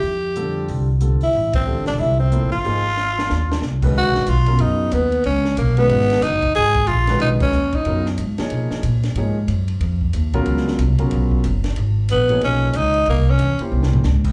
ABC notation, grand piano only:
X:1
M:4/4
L:1/8
Q:"Swing" 1/4=184
K:F
V:1 name="Grand piano"
z2 [D,G,CFA]3 z [D,G,CFA] z | z2 [D,G,CFA]3 z [F,B,EAc] z | [F,B,_E_Ac] z6 [_E,_A,_D_G=B]- | [K:Dbmix] [E,A,DG=B]2 z [D,G,CF_B]3 z2 |
z3 [E,A,DGc]3 z2 | z3 [E,A,DGc]3 z2 | [D,G,CFB] z2 [F,B,EAd]3 z2 | [F,B,EAd] z6 [D,G,CFB]- |
[D,G,CFB]2 z [D,G,CFB]3 z2 | z3 [F,B,EAd]3 z2 | z3 [B,D=E=G=c]3 z2 |]